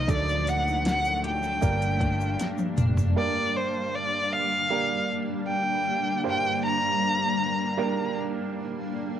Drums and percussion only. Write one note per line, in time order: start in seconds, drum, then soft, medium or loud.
0.08 kick loud
0.08 closed hi-hat loud
0.08 shaker medium
0.28 shaker soft
0.47 closed hi-hat medium
0.47 shaker medium
0.68 shaker soft
0.85 snare loud
0.85 closed hi-hat loud
0.85 shaker medium
1.05 shaker medium
1.24 closed hi-hat medium
1.43 shaker soft
1.62 kick medium
1.62 closed hi-hat medium
1.62 shaker medium
1.82 closed hi-hat soft
1.82 shaker soft
2.01 kick medium
2.01 closed hi-hat medium
2.21 shaker soft
2.40 snare medium
2.40 closed hi-hat loud
2.40 shaker medium
2.58 high tom medium
2.58 shaker soft
2.77 closed hi-hat medium
2.77 mid tom medium
2.77 shaker medium
2.97 floor tom medium
2.97 shaker soft